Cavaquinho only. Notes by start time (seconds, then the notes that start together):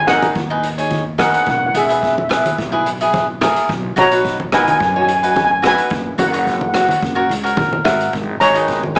0.08 D#4 G#4 B4
0.50 D#4 G#4 B4
0.78 D#4 G#4 C#5
1.18 D#4 G#4 B4
1.75 E4 G#4 B4
1.89 E4 G#4 B4
2.29 E4 G#4 B4
2.72 E4 G#4 B4
3.01 E4 G#4 B4
3.41 E4 G#4 A#4
3.96 D#4 F#4 B4
4.12 D#4 F#4 B4
4.53 D#4 F#4 A#4
4.96 D#4 F#4 C#5
5.23 D#4 F#4 B4
5.62 D#4 F#4 B4
6.18 F#4 B4 C#5
6.33 F#4 B4 C#5
6.75 F#4 B4 C#5
7.15 F#4 A#4 C#5
7.43 F#4 A#4 C#5
7.57 A#4
7.84 F#4 A#4 E5 F#5
8.40 D#4 G#4 B4
8.54 D#4 G#4 B4
8.95 D#4 G#4 B4